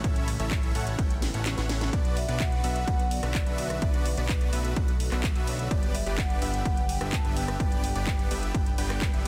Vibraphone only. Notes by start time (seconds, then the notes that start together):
1.93 D5
2.17 E5
2.41 F#5
2.64 F#5
3.12 D5
3.59 E5
3.82 D5
4.06 B4
5.47 C#5
5.71 D5
5.95 E5
6.18 F#5
6.42 F#5
6.89 G5
7.13 A5
7.36 G5
7.84 G5